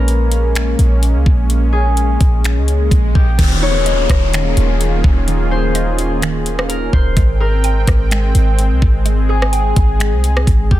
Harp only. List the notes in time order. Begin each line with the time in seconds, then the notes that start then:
Already playing: A#4
1.73 G#4
3.15 G4
3.63 C#5
5.51 C5
6.69 A#4
6.93 C5
7.41 A#4
9.30 G#4
10.71 G4